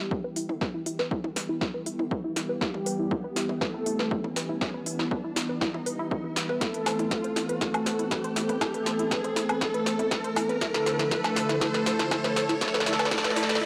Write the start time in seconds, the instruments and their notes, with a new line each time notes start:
Already playing: analog synth pad E3 G3 B3 E4 G4, analog polysynth G3 G4, riser
0.11 synth arpeggio sound E4, kick
0.24 synth arpeggio sound B4
0.36 synth arpeggio sound E4, open hi-hat
0.49 synth arpeggio sound E4, mid tom
0.61 synth arpeggio sound B4, kick, snare
0.74 synth arpeggio sound E4
0.86 synth arpeggio sound E4, open hi-hat
0.99 synth arpeggio sound B4, snare
1.11 synth arpeggio sound E4, kick
1.24 synth arpeggio sound E4, mid tom
1.36 synth arpeggio sound B4, snare, open hi-hat
1.49 synth arpeggio sound E4
1.61 synth arpeggio sound E4, kick, snare
1.74 synth arpeggio sound B4
1.86 synth arpeggio sound E4, open hi-hat
1.99 synth arpeggio sound E4, mid tom
2.11 synth arpeggio sound B4, kick
2.24 synth arpeggio sound E4
2.36 synth arpeggio sound E4, snare, open hi-hat
2.49 synth arpeggio sound B4
2.61 analog polysynth G3 G4, synth arpeggio sound E4, kick, snare
2.74 synth arpeggio sound E4, mid tom
2.86 synth arpeggio sound B4, open hi-hat
2.99 synth arpeggio sound E4
3.11 synth arpeggio sound E4, kick
3.24 synth arpeggio sound B4
3.36 synth arpeggio sound E4, snare, open hi-hat
3.49 synth arpeggio sound E4, mid tom
3.61 analog polysynth A3 A4, synth arpeggio sound B4, kick, snare
3.74 synth arpeggio sound E4
3.86 synth arpeggio sound E4, open hi-hat
3.99 synth arpeggio sound B4, snare
4.11 synth arpeggio sound E4, kick
4.24 synth arpeggio sound E4, mid tom
4.36 synth arpeggio sound B4, snare, open hi-hat
4.49 synth arpeggio sound E4
4.61 synth arpeggio sound E4, kick, snare
4.74 synth arpeggio sound B4
4.86 synth arpeggio sound E4, open hi-hat
4.99 synth arpeggio sound E4, snare, mid tom
5.11 synth arpeggio sound B4, kick
5.24 synth arpeggio sound E4
5.36 synth arpeggio sound E4, snare, open hi-hat
5.49 synth arpeggio sound B4
5.61 synth arpeggio sound E4, kick, snare
5.74 synth arpeggio sound E4, mid tom
5.86 synth arpeggio sound B4, open hi-hat
5.99 synth arpeggio sound E4
6.11 synth arpeggio sound E4, kick
6.24 synth arpeggio sound E4
6.36 synth arpeggio sound B4, snare, open hi-hat
6.49 synth arpeggio sound B4, mid tom
6.61 analog polysynth A3 A4, analog synth pad A3 C4 A4, synth arpeggio sound E4, kick, snare, closed hi-hat
6.74 synth arpeggio sound B4, closed hi-hat
6.86 synth arpeggio sound C5, snare, open hi-hat, low woodblock
6.99 synth arpeggio sound E4, closed hi-hat, mid tom
7.11 synth arpeggio sound B4, kick, snare, closed hi-hat
7.24 synth arpeggio sound C5, closed hi-hat
7.36 synth arpeggio sound E4, snare, open hi-hat
7.49 synth arpeggio sound B4, closed hi-hat
7.61 analog polysynth A3 A4, synth arpeggio sound E4, kick, snare, closed hi-hat
7.74 synth arpeggio sound B4, closed hi-hat, mid tom, low woodblock
7.86 synth arpeggio sound C5, snare, open hi-hat
7.99 synth arpeggio sound E4, closed hi-hat
8.11 synth arpeggio sound B4, kick, snare, closed hi-hat
8.24 synth arpeggio sound C5, closed hi-hat
8.36 synth arpeggio sound E4, snare, open hi-hat
8.49 synth arpeggio sound B4, closed hi-hat, mid tom
8.61 analog polysynth A3 A4, synth arpeggio sound E4, kick, snare, closed hi-hat, low woodblock
8.74 synth arpeggio sound B4, closed hi-hat
8.86 synth arpeggio sound C5, snare, open hi-hat
8.99 synth arpeggio sound E4, closed hi-hat
9.11 synth arpeggio sound B4, kick, snare, closed hi-hat
9.24 synth arpeggio sound C5, closed hi-hat, mid tom
9.36 synth arpeggio sound E4, snare, open hi-hat
9.49 synth arpeggio sound B4, closed hi-hat, low woodblock
9.61 analog polysynth A3 A4, synth arpeggio sound E4, kick, snare, closed hi-hat
9.74 synth arpeggio sound B4, closed hi-hat
9.86 synth arpeggio sound C5, snare, open hi-hat
9.99 synth arpeggio sound E4, closed hi-hat, mid tom
10.11 synth arpeggio sound B4, kick, snare, closed hi-hat
10.24 synth arpeggio sound C5, closed hi-hat
10.36 synth arpeggio sound E4, snare, open hi-hat, low woodblock
10.49 synth arpeggio sound B4, closed hi-hat
10.61 analog synth pad D3 F3 E4, analog polysynth A3 A4, synth arpeggio sound E4, kick, snare, closed hi-hat
10.74 synth arpeggio sound B4, snare, closed hi-hat, mid tom
10.86 synth arpeggio sound C5, snare, open hi-hat
10.99 synth arpeggio sound E4, snare, closed hi-hat
11.11 analog polysynth A3 A4, synth arpeggio sound E4, kick, snare, closed hi-hat
11.24 synth arpeggio sound B4, snare, closed hi-hat, low woodblock
11.36 synth arpeggio sound C5, snare, open hi-hat
11.49 synth arpeggio sound E4, snare, closed hi-hat, mid tom
11.61 analog polysynth A3 A4, synth arpeggio sound E4, kick, snare, closed hi-hat
11.74 synth arpeggio sound B4, snare, closed hi-hat
11.86 synth arpeggio sound C5, snare, open hi-hat
11.99 synth arpeggio sound E4, snare, closed hi-hat
12.11 analog polysynth A3 A4, synth arpeggio sound E4, kick, snare, closed hi-hat, low woodblock
12.24 synth arpeggio sound B4, snare, closed hi-hat, mid tom
12.36 synth arpeggio sound C5, snare, open hi-hat
12.49 synth arpeggio sound E4, snare, closed hi-hat
12.61 analog polysynth A3 A4, synth arpeggio sound E4, kick, snare, closed hi-hat, noise sweep
12.68 snare
12.74 synth arpeggio sound B4, snare, closed hi-hat
12.80 snare
12.86 analog polysynth A3 A4, synth arpeggio sound E4, snare, open hi-hat
12.93 snare
12.99 synth arpeggio sound B4, snare, closed hi-hat, mid tom, low woodblock
13.05 snare
13.11 analog polysynth A3 A4, synth arpeggio sound E4, kick, snare, closed hi-hat
13.18 snare
13.24 synth arpeggio sound B4, snare, closed hi-hat
13.30 snare
13.36 analog polysynth A3 A4, synth arpeggio sound E4, snare, open hi-hat
13.43 snare
13.49 synth arpeggio sound B4, snare, closed hi-hat
13.55 snare
13.61 synth arpeggio sound E4